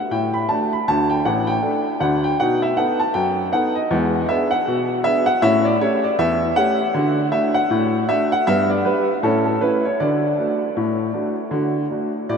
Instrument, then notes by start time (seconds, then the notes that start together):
upright piano
Already playing: F#5
0.11 A2 G5
0.34 B5
0.49 A3 D4 F#4 A5
0.73 B5
0.88 D2 D3 A5
1.10 G5
1.25 A1 A2 F#5
1.47 G5
1.62 A3 D4 A4
2.00 D2 D3 F#5
2.24 G5
2.40 B2 D#4 F#5
2.62 E5
2.77 B3 D#4 A4 F#5
3.00 A5
3.14 F#2 G5
3.53 B3 D#4 A4 F#5
3.75 D#5
3.91 E2 G#3
4.29 B3 D4 G#4 E5
4.51 F#5
4.68 B2
5.04 B3 D4 G#4 E5
5.26 F#5
5.42 A2 C#4 E5
5.65 D5
5.81 A3 C#4 G4 C#5
6.04 D5
6.18 E2 E5
6.56 A3 C#4 G4 F#5
6.94 D3 F#4
7.32 A3 D4 F#4 E5
7.54 F#5
7.70 A2
8.08 A3 D4 F#4 E5
8.32 F#5
8.47 G2 B3 E5
8.70 D5
8.85 G3 D4 G4 B4
9.23 A2 C#4 A4
9.45 A4
9.61 A3 C#4 E4 B4
9.85 C#5
10.00 D3 F#4 D5
10.38 A3 D4 F#4
10.77 A2
11.14 A3 D4 F#4
11.51 D3 F#4
11.91 A3 D4 F#4
12.29 A2 D5